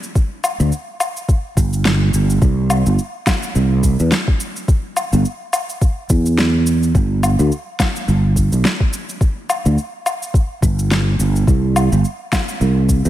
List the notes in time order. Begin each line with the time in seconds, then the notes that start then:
0.03 shaker
0.15 kick, shaker
0.44 low woodblock, shaker
0.60 D2, shaker
0.72 shaker
1.00 low woodblock, shaker
1.17 shaker
1.29 kick, shaker
1.57 G1, kick, shaker
1.73 shaker
1.85 snare, shaker
2.14 G1, shaker
2.30 shaker
2.42 C2, kick, shaker
2.70 low woodblock, shaker
2.86 G1, shaker
2.99 shaker
3.27 kick, snare, low woodblock, shaker
3.43 shaker
3.55 C2, shaker
3.83 kick, shaker
3.99 E2, shaker
4.12 snare, shaker
4.28 kick
4.40 shaker
4.56 shaker
4.68 kick, shaker
4.97 low woodblock, shaker
5.13 G1, shaker
5.25 shaker
5.53 low woodblock, shaker
5.69 shaker
5.81 kick, shaker
6.10 E2, kick, shaker
6.26 shaker
6.38 snare, shaker
6.67 shaker
6.83 shaker
6.95 G1, kick, shaker
7.23 low woodblock, shaker
7.39 D2, shaker
7.52 shaker
7.80 kick, snare, low woodblock, shaker
7.96 shaker
8.08 G1, shaker
8.36 kick, shaker
8.52 B1, shaker
8.65 snare, shaker
8.80 kick
8.93 shaker
9.09 shaker
9.21 kick, shaker
9.50 low woodblock, shaker
9.66 D2, shaker
9.78 shaker
10.06 low woodblock, shaker
10.22 shaker
10.34 kick, shaker
10.62 G1, kick, shaker
10.79 shaker
10.91 snare, shaker
11.19 G1, shaker
11.36 shaker
11.47 C2, kick, shaker
11.76 low woodblock, shaker
11.92 G1, shaker
12.04 shaker
12.32 kick, snare, low woodblock, shaker
12.49 shaker
12.61 C2, shaker
12.89 kick, shaker
13.05 E2, shaker